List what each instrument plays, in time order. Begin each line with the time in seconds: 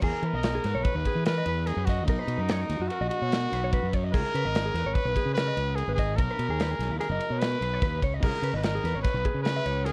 Already playing: clean electric guitar B3
0.02 fingered electric bass E2, clean electric guitar G#4, trumpet A#4, kick, crash
0.22 fingered electric bass E3, clean electric guitar B4, ride
0.33 fingered electric bass B1, clean electric guitar D#5
0.43 snare, ride
0.55 clean electric guitar G#4
0.64 fingered electric bass G#2, clean electric guitar B4, snare, ride
0.74 fingered electric bass B1, clean electric guitar C#5
0.83 trumpet B4, kick, ride
0.95 fingered electric bass D#2, clean electric guitar B4
1.05 clean electric guitar G#4, kick, ride
1.15 fingered electric bass E3
1.25 clean electric guitar A#4, trumpet B4, snare, ride
1.38 clean electric guitar D#5
1.45 fingered electric bass E2, clean electric guitar B4, ride
1.67 trumpet G#4, clean electric guitar A#4, snare, ride
1.76 fingered electric bass F#2, clean electric guitar B4
1.86 trumpet F#4, clean electric guitar D#5, kick, snare, ride
2.06 fingered electric bass B1, trumpet D#4, clean electric guitar A#4, kick, ride
2.19 clean electric guitar B4
2.27 fingered electric bass B2, ride
2.38 fingered electric bass F#2, clean electric guitar A#4
2.49 clean electric guitar C#5, snare, ride
2.61 clean electric guitar A#4
2.70 fingered electric bass D#2, snare, ride
2.80 fingered electric bass F#2, clean electric guitar F#4
2.89 trumpet F#4, clean electric guitar A#4, ride
3.01 fingered electric bass A#1, clean electric guitar D#5
3.09 trumpet F#4, ride
3.22 fingered electric bass B2, clean electric guitar C#5
3.32 clean electric guitar A#4, snare, ride
3.52 fingered electric bass B1, clean electric guitar B4, snare, ride
3.64 clean electric guitar C#5
3.73 clean electric guitar B4, kick, ride
3.83 fingered electric bass F#2
3.93 clean electric guitar C#5, kick, ride
4.04 clean electric guitar D#5
4.12 fingered electric bass C#2, clean electric guitar G#4, trumpet A#4, kick, crash
4.34 fingered electric bass C#3, clean electric guitar B4, ride
4.45 fingered electric bass G#1, clean electric guitar D#5
4.55 snare, ride
4.66 clean electric guitar G#4
4.74 fingered electric bass E2, clean electric guitar B4, snare, ride
4.84 fingered electric bass G#1, clean electric guitar C#5
4.94 trumpet B4, kick, ride
5.05 fingered electric bass B1, clean electric guitar B4
5.16 clean electric guitar G#4, kick, ride
5.26 fingered electric bass C#3
5.34 clean electric guitar A#4, trumpet B4, ride
5.38 snare
5.48 clean electric guitar D#5
5.57 fingered electric bass C#2, clean electric guitar B4, ride
5.75 trumpet G#4, clean electric guitar A#4, ride
5.87 fingered electric bass G#1, clean electric guitar B4
5.94 trumpet G#4, kick, ride
5.99 clean electric guitar D#5
6.16 fingered electric bass B1, trumpet A#4, clean electric guitar A#4, kick, ride
6.30 clean electric guitar B4
6.39 fingered electric bass B2, ride
6.48 fingered electric bass D#2, clean electric guitar G#4
6.59 clean electric guitar B4, snare, ride
6.71 clean electric guitar G#4
6.79 fingered electric bass B1, snare, ride
6.89 fingered electric bass D#2, clean electric guitar E4
6.99 clean electric guitar G#4, trumpet A#4, snare, ride
7.09 fingered electric bass F#1, clean electric guitar D#5
7.20 ride
7.30 fingered electric bass B2, clean electric guitar C#5
7.39 clean electric guitar A#4, trumpet B4, snare, ride
7.61 fingered electric bass B1, clean electric guitar B4, ride
7.74 clean electric guitar C#5
7.82 fingered electric bass D#2, clean electric guitar B4, kick, snare, ride
8.02 fingered electric bass C#2, clean electric guitar C#5, kick, ride
8.14 clean electric guitar D#5
8.22 fingered electric bass C#2, clean electric guitar G#4, trumpet A#4, kick, crash
8.42 fingered electric bass C#3, clean electric guitar B4, ride
8.53 fingered electric bass G#1, trumpet B4, clean electric guitar D#5
8.63 trumpet A#4, snare, ride
8.75 clean electric guitar G#4
8.84 fingered electric bass E2, clean electric guitar B4, snare, ride
8.94 fingered electric bass G#1, clean electric guitar C#5
9.02 trumpet B4, kick, snare, ride
9.14 fingered electric bass B1, clean electric guitar B4
9.25 clean electric guitar G#4, kick, ride
9.34 fingered electric bass C#3
9.43 trumpet B4, clean electric guitar B4, snare, ride
9.57 clean electric guitar E5
9.66 fingered electric bass C#2, clean electric guitar C#5, ride
9.85 trumpet G#4, clean electric guitar A#4, snare, ride